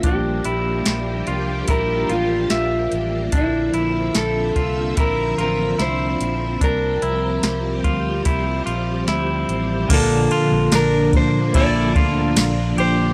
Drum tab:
CC |--------|--------|--------|x-------|
RD |--------|--------|--------|xxxxxxxx|
HH |xxxxxxxx|xxxxxxxx|xxxxxxxx|--------|
TB |--------|--------|--------|--x---x-|
SD |--o---o-|--o---o-|--o---o-|--o---o-|
BD |o---o---|o--oo---|o--oo---|o--ooo--|